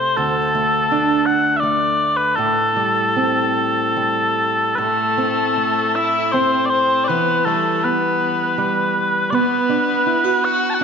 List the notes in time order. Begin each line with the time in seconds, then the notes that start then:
Already playing: C3 A3 C4 C5
0.17 D2 A4
0.55 A3
0.91 D4
1.26 F#5
1.57 D5 E5
1.63 A3
2.17 B4
2.35 A2 A4
2.76 G3
3.16 C4
3.97 G3
4.75 A2 A3 A4 B4
5.17 C4
5.57 A3
5.95 E4 E5
6.32 C4 C5
6.66 D5
6.70 C4 C5
7.04 B4 D5
7.09 E3 B3
7.45 G3 A3 A4
7.83 B3 B4
8.58 G3
9.30 B3 D5
9.35 B4
9.69 D4
10.06 E4
10.24 F#4
10.43 F#4 F#5
10.70 A5
10.74 F#4 F#5